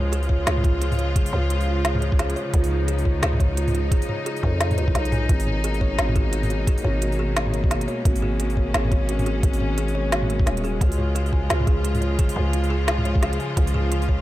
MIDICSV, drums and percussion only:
0, 0, Header, 1, 2, 480
1, 0, Start_track
1, 0, Tempo, 344828
1, 1608, Time_signature, 4, 2, 24, 8
1, 19784, End_track
2, 0, Start_track
2, 0, Title_t, "Drums"
2, 177, Note_on_c, 9, 42, 63
2, 316, Note_off_c, 9, 42, 0
2, 316, Note_on_c, 9, 46, 37
2, 411, Note_on_c, 9, 36, 61
2, 455, Note_off_c, 9, 46, 0
2, 551, Note_off_c, 9, 36, 0
2, 653, Note_on_c, 9, 38, 115
2, 653, Note_on_c, 9, 42, 76
2, 792, Note_off_c, 9, 38, 0
2, 792, Note_off_c, 9, 42, 0
2, 798, Note_on_c, 9, 45, 57
2, 891, Note_on_c, 9, 36, 106
2, 896, Note_on_c, 9, 42, 34
2, 937, Note_off_c, 9, 45, 0
2, 1031, Note_off_c, 9, 36, 0
2, 1035, Note_off_c, 9, 42, 0
2, 1135, Note_on_c, 9, 42, 62
2, 1274, Note_off_c, 9, 42, 0
2, 1277, Note_on_c, 9, 45, 51
2, 1277, Note_on_c, 9, 46, 37
2, 1375, Note_on_c, 9, 42, 34
2, 1417, Note_off_c, 9, 45, 0
2, 1417, Note_off_c, 9, 46, 0
2, 1514, Note_off_c, 9, 42, 0
2, 1612, Note_on_c, 9, 36, 114
2, 1613, Note_on_c, 9, 42, 78
2, 1751, Note_off_c, 9, 36, 0
2, 1752, Note_off_c, 9, 42, 0
2, 1754, Note_on_c, 9, 46, 68
2, 1854, Note_on_c, 9, 45, 36
2, 1893, Note_off_c, 9, 46, 0
2, 1993, Note_off_c, 9, 45, 0
2, 2092, Note_on_c, 9, 42, 62
2, 2231, Note_off_c, 9, 42, 0
2, 2235, Note_on_c, 9, 46, 38
2, 2374, Note_off_c, 9, 46, 0
2, 2572, Note_on_c, 9, 38, 115
2, 2572, Note_on_c, 9, 42, 76
2, 2711, Note_off_c, 9, 38, 0
2, 2711, Note_off_c, 9, 42, 0
2, 2714, Note_on_c, 9, 45, 62
2, 2811, Note_on_c, 9, 42, 33
2, 2853, Note_off_c, 9, 45, 0
2, 2951, Note_off_c, 9, 42, 0
2, 2954, Note_on_c, 9, 36, 98
2, 3052, Note_on_c, 9, 38, 59
2, 3052, Note_on_c, 9, 42, 63
2, 3094, Note_off_c, 9, 36, 0
2, 3191, Note_off_c, 9, 38, 0
2, 3191, Note_off_c, 9, 42, 0
2, 3197, Note_on_c, 9, 42, 35
2, 3293, Note_on_c, 9, 46, 39
2, 3336, Note_off_c, 9, 42, 0
2, 3432, Note_off_c, 9, 46, 0
2, 3530, Note_on_c, 9, 42, 77
2, 3532, Note_on_c, 9, 36, 115
2, 3669, Note_off_c, 9, 42, 0
2, 3672, Note_off_c, 9, 36, 0
2, 3672, Note_on_c, 9, 46, 69
2, 3811, Note_off_c, 9, 46, 0
2, 4011, Note_on_c, 9, 42, 63
2, 4150, Note_off_c, 9, 42, 0
2, 4154, Note_on_c, 9, 46, 40
2, 4251, Note_on_c, 9, 36, 60
2, 4293, Note_off_c, 9, 46, 0
2, 4391, Note_off_c, 9, 36, 0
2, 4493, Note_on_c, 9, 38, 109
2, 4493, Note_on_c, 9, 42, 75
2, 4632, Note_off_c, 9, 38, 0
2, 4632, Note_off_c, 9, 42, 0
2, 4636, Note_on_c, 9, 45, 63
2, 4730, Note_on_c, 9, 36, 101
2, 4737, Note_on_c, 9, 42, 34
2, 4775, Note_off_c, 9, 45, 0
2, 4870, Note_off_c, 9, 36, 0
2, 4876, Note_off_c, 9, 42, 0
2, 4974, Note_on_c, 9, 42, 66
2, 5113, Note_off_c, 9, 42, 0
2, 5117, Note_on_c, 9, 45, 55
2, 5117, Note_on_c, 9, 46, 39
2, 5215, Note_on_c, 9, 42, 36
2, 5256, Note_off_c, 9, 45, 0
2, 5256, Note_off_c, 9, 46, 0
2, 5354, Note_off_c, 9, 42, 0
2, 5450, Note_on_c, 9, 36, 117
2, 5453, Note_on_c, 9, 42, 78
2, 5589, Note_off_c, 9, 36, 0
2, 5592, Note_off_c, 9, 42, 0
2, 5596, Note_on_c, 9, 46, 68
2, 5695, Note_on_c, 9, 45, 39
2, 5735, Note_off_c, 9, 46, 0
2, 5834, Note_off_c, 9, 45, 0
2, 5934, Note_on_c, 9, 42, 66
2, 6073, Note_off_c, 9, 42, 0
2, 6076, Note_on_c, 9, 46, 38
2, 6169, Note_on_c, 9, 36, 60
2, 6215, Note_off_c, 9, 46, 0
2, 6308, Note_off_c, 9, 36, 0
2, 6411, Note_on_c, 9, 38, 112
2, 6411, Note_on_c, 9, 42, 77
2, 6550, Note_off_c, 9, 38, 0
2, 6550, Note_off_c, 9, 42, 0
2, 6554, Note_on_c, 9, 45, 64
2, 6554, Note_on_c, 9, 46, 38
2, 6651, Note_on_c, 9, 42, 35
2, 6693, Note_off_c, 9, 45, 0
2, 6693, Note_off_c, 9, 46, 0
2, 6790, Note_off_c, 9, 42, 0
2, 6791, Note_on_c, 9, 36, 101
2, 6892, Note_on_c, 9, 38, 61
2, 6892, Note_on_c, 9, 42, 66
2, 6930, Note_off_c, 9, 36, 0
2, 7031, Note_off_c, 9, 38, 0
2, 7031, Note_off_c, 9, 42, 0
2, 7034, Note_on_c, 9, 42, 37
2, 7130, Note_on_c, 9, 45, 63
2, 7130, Note_on_c, 9, 46, 38
2, 7173, Note_off_c, 9, 42, 0
2, 7269, Note_off_c, 9, 45, 0
2, 7269, Note_off_c, 9, 46, 0
2, 7368, Note_on_c, 9, 36, 120
2, 7369, Note_on_c, 9, 42, 84
2, 7507, Note_off_c, 9, 36, 0
2, 7508, Note_off_c, 9, 42, 0
2, 7513, Note_on_c, 9, 46, 66
2, 7611, Note_on_c, 9, 45, 39
2, 7652, Note_off_c, 9, 46, 0
2, 7750, Note_off_c, 9, 45, 0
2, 7851, Note_on_c, 9, 42, 70
2, 7990, Note_off_c, 9, 42, 0
2, 7994, Note_on_c, 9, 46, 37
2, 8089, Note_on_c, 9, 36, 63
2, 8133, Note_off_c, 9, 46, 0
2, 8229, Note_off_c, 9, 36, 0
2, 8332, Note_on_c, 9, 38, 118
2, 8332, Note_on_c, 9, 42, 78
2, 8471, Note_off_c, 9, 38, 0
2, 8471, Note_off_c, 9, 42, 0
2, 8474, Note_on_c, 9, 45, 65
2, 8569, Note_on_c, 9, 36, 106
2, 8569, Note_on_c, 9, 42, 37
2, 8613, Note_off_c, 9, 45, 0
2, 8708, Note_off_c, 9, 36, 0
2, 8708, Note_off_c, 9, 42, 0
2, 8807, Note_on_c, 9, 42, 68
2, 8947, Note_off_c, 9, 42, 0
2, 8953, Note_on_c, 9, 45, 56
2, 8953, Note_on_c, 9, 46, 37
2, 9051, Note_on_c, 9, 42, 38
2, 9092, Note_off_c, 9, 45, 0
2, 9092, Note_off_c, 9, 46, 0
2, 9190, Note_off_c, 9, 42, 0
2, 9289, Note_on_c, 9, 36, 123
2, 9292, Note_on_c, 9, 42, 84
2, 9428, Note_off_c, 9, 36, 0
2, 9431, Note_off_c, 9, 42, 0
2, 9433, Note_on_c, 9, 46, 64
2, 9531, Note_on_c, 9, 45, 38
2, 9572, Note_off_c, 9, 46, 0
2, 9671, Note_off_c, 9, 45, 0
2, 9771, Note_on_c, 9, 42, 68
2, 9910, Note_off_c, 9, 42, 0
2, 9914, Note_on_c, 9, 46, 36
2, 10054, Note_off_c, 9, 46, 0
2, 10252, Note_on_c, 9, 38, 122
2, 10252, Note_on_c, 9, 42, 81
2, 10391, Note_off_c, 9, 38, 0
2, 10391, Note_off_c, 9, 42, 0
2, 10393, Note_on_c, 9, 45, 63
2, 10491, Note_on_c, 9, 42, 38
2, 10533, Note_off_c, 9, 45, 0
2, 10630, Note_off_c, 9, 42, 0
2, 10631, Note_on_c, 9, 36, 107
2, 10732, Note_on_c, 9, 38, 62
2, 10732, Note_on_c, 9, 42, 69
2, 10770, Note_off_c, 9, 36, 0
2, 10871, Note_off_c, 9, 38, 0
2, 10871, Note_off_c, 9, 42, 0
2, 10875, Note_on_c, 9, 42, 39
2, 10971, Note_on_c, 9, 46, 35
2, 11014, Note_off_c, 9, 42, 0
2, 11111, Note_off_c, 9, 46, 0
2, 11209, Note_on_c, 9, 36, 125
2, 11211, Note_on_c, 9, 42, 84
2, 11349, Note_off_c, 9, 36, 0
2, 11351, Note_off_c, 9, 42, 0
2, 11353, Note_on_c, 9, 46, 65
2, 11450, Note_on_c, 9, 45, 37
2, 11492, Note_off_c, 9, 46, 0
2, 11589, Note_off_c, 9, 45, 0
2, 11688, Note_on_c, 9, 42, 66
2, 11828, Note_off_c, 9, 42, 0
2, 11830, Note_on_c, 9, 46, 36
2, 11931, Note_on_c, 9, 36, 66
2, 11970, Note_off_c, 9, 46, 0
2, 12070, Note_off_c, 9, 36, 0
2, 12171, Note_on_c, 9, 38, 123
2, 12171, Note_on_c, 9, 42, 78
2, 12310, Note_off_c, 9, 38, 0
2, 12310, Note_off_c, 9, 42, 0
2, 12313, Note_on_c, 9, 45, 60
2, 12411, Note_on_c, 9, 36, 113
2, 12411, Note_on_c, 9, 42, 36
2, 12452, Note_off_c, 9, 45, 0
2, 12550, Note_off_c, 9, 36, 0
2, 12551, Note_off_c, 9, 42, 0
2, 12651, Note_on_c, 9, 42, 67
2, 12790, Note_off_c, 9, 42, 0
2, 12794, Note_on_c, 9, 45, 53
2, 12794, Note_on_c, 9, 46, 36
2, 12894, Note_on_c, 9, 42, 37
2, 12933, Note_off_c, 9, 45, 0
2, 12933, Note_off_c, 9, 46, 0
2, 13033, Note_off_c, 9, 42, 0
2, 13129, Note_on_c, 9, 36, 121
2, 13131, Note_on_c, 9, 42, 78
2, 13268, Note_off_c, 9, 36, 0
2, 13270, Note_off_c, 9, 42, 0
2, 13272, Note_on_c, 9, 46, 65
2, 13370, Note_on_c, 9, 45, 35
2, 13411, Note_off_c, 9, 46, 0
2, 13509, Note_off_c, 9, 45, 0
2, 13610, Note_on_c, 9, 42, 64
2, 13749, Note_off_c, 9, 42, 0
2, 13756, Note_on_c, 9, 46, 36
2, 13895, Note_off_c, 9, 46, 0
2, 14092, Note_on_c, 9, 38, 117
2, 14092, Note_on_c, 9, 42, 78
2, 14231, Note_off_c, 9, 38, 0
2, 14231, Note_off_c, 9, 42, 0
2, 14235, Note_on_c, 9, 45, 56
2, 14335, Note_on_c, 9, 42, 35
2, 14374, Note_off_c, 9, 45, 0
2, 14470, Note_on_c, 9, 36, 107
2, 14475, Note_off_c, 9, 42, 0
2, 14573, Note_on_c, 9, 38, 65
2, 14573, Note_on_c, 9, 42, 63
2, 14609, Note_off_c, 9, 36, 0
2, 14712, Note_off_c, 9, 38, 0
2, 14712, Note_off_c, 9, 42, 0
2, 14716, Note_on_c, 9, 42, 36
2, 14816, Note_on_c, 9, 46, 34
2, 14855, Note_off_c, 9, 42, 0
2, 14955, Note_off_c, 9, 46, 0
2, 15048, Note_on_c, 9, 36, 118
2, 15052, Note_on_c, 9, 42, 78
2, 15187, Note_off_c, 9, 36, 0
2, 15191, Note_off_c, 9, 42, 0
2, 15197, Note_on_c, 9, 46, 66
2, 15294, Note_on_c, 9, 45, 36
2, 15336, Note_off_c, 9, 46, 0
2, 15433, Note_off_c, 9, 45, 0
2, 15531, Note_on_c, 9, 42, 61
2, 15670, Note_off_c, 9, 42, 0
2, 15675, Note_on_c, 9, 46, 38
2, 15769, Note_on_c, 9, 36, 61
2, 15814, Note_off_c, 9, 46, 0
2, 15908, Note_off_c, 9, 36, 0
2, 16010, Note_on_c, 9, 38, 120
2, 16010, Note_on_c, 9, 42, 75
2, 16150, Note_off_c, 9, 38, 0
2, 16150, Note_off_c, 9, 42, 0
2, 16150, Note_on_c, 9, 45, 59
2, 16248, Note_on_c, 9, 36, 108
2, 16248, Note_on_c, 9, 42, 34
2, 16289, Note_off_c, 9, 45, 0
2, 16387, Note_off_c, 9, 36, 0
2, 16387, Note_off_c, 9, 42, 0
2, 16489, Note_on_c, 9, 42, 65
2, 16628, Note_off_c, 9, 42, 0
2, 16629, Note_on_c, 9, 45, 51
2, 16629, Note_on_c, 9, 46, 38
2, 16729, Note_on_c, 9, 42, 34
2, 16768, Note_off_c, 9, 45, 0
2, 16768, Note_off_c, 9, 46, 0
2, 16868, Note_off_c, 9, 42, 0
2, 16966, Note_on_c, 9, 42, 75
2, 16968, Note_on_c, 9, 36, 115
2, 17105, Note_off_c, 9, 42, 0
2, 17108, Note_off_c, 9, 36, 0
2, 17109, Note_on_c, 9, 46, 71
2, 17209, Note_on_c, 9, 45, 38
2, 17248, Note_off_c, 9, 46, 0
2, 17348, Note_off_c, 9, 45, 0
2, 17447, Note_on_c, 9, 42, 63
2, 17586, Note_off_c, 9, 42, 0
2, 17590, Note_on_c, 9, 46, 39
2, 17729, Note_off_c, 9, 46, 0
2, 17928, Note_on_c, 9, 38, 110
2, 17928, Note_on_c, 9, 42, 74
2, 18067, Note_off_c, 9, 38, 0
2, 18067, Note_off_c, 9, 42, 0
2, 18070, Note_on_c, 9, 45, 60
2, 18169, Note_on_c, 9, 42, 34
2, 18210, Note_off_c, 9, 45, 0
2, 18309, Note_off_c, 9, 42, 0
2, 18311, Note_on_c, 9, 36, 100
2, 18410, Note_on_c, 9, 38, 61
2, 18410, Note_on_c, 9, 42, 63
2, 18451, Note_off_c, 9, 36, 0
2, 18550, Note_off_c, 9, 38, 0
2, 18550, Note_off_c, 9, 42, 0
2, 18553, Note_on_c, 9, 42, 36
2, 18651, Note_on_c, 9, 46, 37
2, 18692, Note_off_c, 9, 42, 0
2, 18790, Note_off_c, 9, 46, 0
2, 18890, Note_on_c, 9, 36, 113
2, 18890, Note_on_c, 9, 42, 80
2, 19029, Note_off_c, 9, 36, 0
2, 19030, Note_off_c, 9, 42, 0
2, 19033, Note_on_c, 9, 46, 71
2, 19132, Note_on_c, 9, 45, 39
2, 19172, Note_off_c, 9, 46, 0
2, 19272, Note_off_c, 9, 45, 0
2, 19372, Note_on_c, 9, 42, 66
2, 19511, Note_off_c, 9, 42, 0
2, 19515, Note_on_c, 9, 46, 39
2, 19610, Note_on_c, 9, 36, 59
2, 19654, Note_off_c, 9, 46, 0
2, 19749, Note_off_c, 9, 36, 0
2, 19784, End_track
0, 0, End_of_file